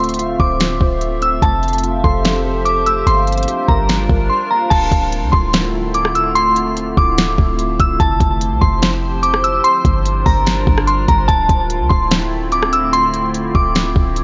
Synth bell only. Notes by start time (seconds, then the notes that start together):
Already playing: C6
0.40 D6
1.22 E6
1.42 A5
2.04 C6
2.65 D6
2.86 E6
3.07 C6
3.68 A#5
4.30 C6
4.51 A#5
4.70 A5
5.32 C6
5.95 D6
6.15 E6
6.35 C6
6.97 D6
7.80 E6
8.00 A5
8.61 C6
9.23 D6
9.44 E6
9.64 C6
10.26 A#5
10.87 C6
11.08 A#5
11.28 A5
11.89 C6
12.52 D6
12.73 E6
12.93 C6
13.55 D6